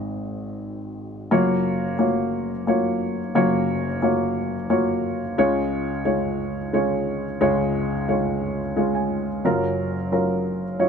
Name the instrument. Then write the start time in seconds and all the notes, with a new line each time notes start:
upright piano
Already playing: G#1 G#2 C4 F#4 G#4 D#5
1.31 F#1 F#2 A#3 F4 F#4 C#5
1.99 A#3 F4 F#4 C#5
2.67 A#3 F4 F#4 C#5
3.35 F#1 F#2 A#3 F4 F#4 C#5
4.02 A#3 F4 F#4 C#5
4.70 A#3 F4 F#4 C#5
5.38 C#2 C#3 G#3 C#4 F4 C#5
6.05 G#3 C#4 F4 C#5
6.73 G#3 C#4 F4 C#5
7.41 C#2 C#3 G#3 C#4 F4 C#5
8.09 G#3 C#4 F4 C#5
8.76 G#3 C#4 F4 C#5
8.95 G#5
9.45 F#1 F#2 F#3 C#4 F4 A#4
10.12 F#3 C#4 F4 A#4
10.79 F#3 C#4 F4 C#5